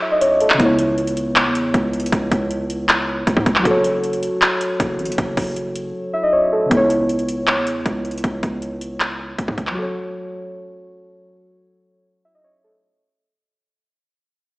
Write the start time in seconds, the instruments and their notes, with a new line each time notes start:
Already playing: synth keys F#3 F#4 A4 C#5
0.02 synth keys E5
0.12 synth keys D#5
0.21 synth keys C#5, closed hi-hat
0.40 synth keys A4, closed hi-hat
0.50 clap, closed hi-hat
0.54 synth keys C#3 B3
0.60 808-style bass C#2, synth keys E4, kick, closed hi-hat
0.65 synth keys C#5
0.79 closed hi-hat
0.98 closed hi-hat
1.07 closed hi-hat
1.17 closed hi-hat
1.36 clap, closed hi-hat
1.46 808-style bass E2
1.55 closed hi-hat
1.74 808-style bass C#2, kick, closed hi-hat
1.93 closed hi-hat
2.00 closed hi-hat
2.06 closed hi-hat
2.12 808-style bass C#2, kick, closed hi-hat
2.31 808-style bass C#2, kick, closed hi-hat
2.51 closed hi-hat
2.70 closed hi-hat
2.89 clap, closed hi-hat
3.27 808-style bass C#2, kick, closed hi-hat
3.37 808-style bass G#2, kick
3.46 808-style bass C#2, kick, closed hi-hat
3.56 synth keys F#3, clap
3.63 808-style bass F#1, synth keys F#4 A4, kick, closed hi-hat
3.71 synth keys C#5
3.84 closed hi-hat
4.04 closed hi-hat
4.13 closed hi-hat
4.23 closed hi-hat
4.42 clap, closed hi-hat
4.61 closed hi-hat
4.80 808-style bass F#1, kick, closed hi-hat
4.99 808-style bass A1, closed hi-hat
5.05 808-style bass F#1, closed hi-hat
5.12 closed hi-hat
5.18 808-style bass F#1, kick, closed hi-hat
5.37 808-style bass F#1, kick, open hi-hat
5.56 closed hi-hat
5.76 closed hi-hat
6.13 synth keys E5
6.23 synth keys D#5
6.33 synth keys C#5
6.53 synth keys A4
6.66 synth keys C#3 B3
6.71 808-style bass C#2, synth keys E4, kick, closed hi-hat
6.77 synth keys C#5
6.90 closed hi-hat
7.09 closed hi-hat
7.19 closed hi-hat
7.28 closed hi-hat
7.47 clap, closed hi-hat
7.57 808-style bass E2
7.67 closed hi-hat
7.86 808-style bass C#2, kick, closed hi-hat
8.05 closed hi-hat
8.11 closed hi-hat
8.18 closed hi-hat
8.24 808-style bass C#2, kick, closed hi-hat
8.43 808-style bass C#2, kick, closed hi-hat
8.62 closed hi-hat
8.81 closed hi-hat
9.00 clap, closed hi-hat
9.38 808-style bass C#2, kick, closed hi-hat
9.48 808-style bass G#2, kick
9.58 808-style bass C#2, kick, closed hi-hat
9.67 synth keys F#3, clap
9.75 synth keys F#4 A4
9.82 synth keys C#5
12.25 synth keys E5
12.35 synth keys D#5
12.44 synth keys C#5
12.64 synth keys A4